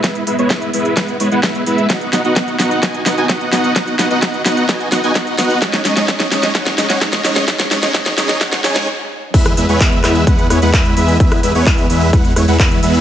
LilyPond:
<<
  \new Staff \with { instrumentName = "Supersaw synth" } { \time 4/4 \key e \major \tempo 4 = 129 <b b'>8 <gis b e' b' e''>16 <gis b e' b' cis''>16 gis8 <gis b e' b' e''>8 <gis b b' fis''>8 <gis b e' b' cis''>16 <gis b e' b' fis''>16 <e' e''>8 <gis b e' b' e''>8 | <b dis' fis' dis'' fis''>8 <b dis' fis' dis'' fis''>16 <b dis' fis' dis'' fis''>16 <b dis' fis' fis''>8 <b dis' fis' dis'' fis''>8 <b dis' fis' dis'' gis''>8 <b dis' fis' dis'' fis''>16 <b dis' fis' dis'' gis''>16 <b dis' fis' dis'' fis''>8 <b dis' fis' dis'' fis''>8 | <b dis' fis' dis'' fis''>8 <b dis' fis' dis'' fis''>16 <b dis' fis' dis'' fis''>16 <b dis' fis' dis'' fis''>8 <b dis' fis' dis'' fis''>8 <b dis' fis' dis'' gis''>8 <b dis' fis' dis'' fis''>16 <b dis' fis' dis'' gis''>16 <b dis' fis' dis'' fis''>8 <b dis' fis' dis'' fis''>8 | <gis cis' dis'>8 <gis cis' dis' cis'' dis''>16 <gis cis' dis' cis'' dis''>16 <gis cis' dis' cis'' dis''>8 <gis cis' dis' cis'' dis''>8 <gis cis' dis' cis'' fis''>8 <gis cis' dis' cis'' dis''>16 <gis cis' dis' cis'' fis''>16 <gis cis' dis' cis'' dis''>8 <gis cis' dis' cis'' dis''>8 |
<gis cis' dis' cis'' dis''>8 <gis cis' dis' cis'' dis''>16 <gis cis' dis' cis'' dis''>16 <gis cis' dis' cis'' dis''>8 <gis cis' dis' cis'' dis''>8 <gis cis' dis' cis'' fis''>8 <gis cis' dis' cis'' gis''>8 r4 | <gis b e' b' e''>8 <gis b e' b' e''>16 <gis b e' b' cis''>16 <e' e''>8 <gis b e' b' e''>8 <gis b e' b' fis''>8 <gis b e' b' cis''>16 <gis b e' b' fis''>16 <gis b e' e''>8 <gis b e' b' e''>8 | <gis b e' b' e''>8 <gis b e' b' e''>16 <gis b e' b' cis''>16 <gis b e' b'>8 <gis b e' b' e''>8 <gis b e' b'>8 <gis b e' b' cis''>16 <gis b e' b' fis''>16 <gis b e' e''>8 <gis b e' b' e''>8 | }
  \new Staff \with { instrumentName = "Detuned saw bass" } { \clef bass \time 4/4 \key e \major r1 | r1 | r1 | r1 |
r1 | e,8 e,16 e,16 e,8 e,8 e,8 e,16 e,16 e,8 e,8 | e,8 e,16 e,16 e,8 e,8 e,8 e,16 e,16 e,8 e,8 | }
  \new DrumStaff \with { instrumentName = "Drums" } \drummode { \time 4/4 <hh bd sn>16 hh16 hho16 hh16 <hh bd sn>16 hh16 hho16 hh16 <hh bd sn>16 hh16 hho16 hh16 <hh bd sn>16 hh16 hho16 hh16 | <hh bd sn>16 hh16 <hho sn>16 hh16 <hh bd sn>16 hh16 <hho sn>16 hh16 <hh bd sn>16 hh16 <hho sn>16 hh16 <hh bd sn>16 hh16 <hho sn>16 hh16 | <hh bd sn>16 hh16 <hho sn>16 hh16 <hh bd sn>16 hh16 <hho sn>16 hh16 <hh bd sn>16 hh16 <hho sn>16 hh16 <hh bd sn>16 hh16 <hho sn>16 hh16 | <hh bd sn>16 <hh sn>16 <hho sn>16 <hh sn>16 <hh bd sn>16 <hh sn>16 <hho sn>16 <hh sn>16 <hh bd sn>16 <hh sn>16 <hho sn>16 <hh sn>16 <hh bd sn>16 <hh sn>16 <hho sn>16 <hh sn>16 |
<hh bd sn>16 <hh sn>16 <hho sn>16 <hh sn>16 <hh bd sn>16 <hh sn>16 <hho sn>16 <hh sn>16 <hh bd sn>16 <hh sn>16 <hho sn>16 <hh sn>16 r4 | <cymc hh bd>16 <hh ss>16 hho16 hh16 <hc hh bd>16 hh16 <hc hho ss>16 hh16 <hh bd>16 hh16 <hho ss>16 hh16 <hc hh bd>16 hh16 hho16 hh16 | <hh bd>16 <hh ss>16 hho16 hh16 <hc hh bd>16 hh16 hho16 hh16 <hh bd>16 hh16 <hho ss>16 hh16 <hc hh bd>16 hh16 hho16 hh16 | }
>>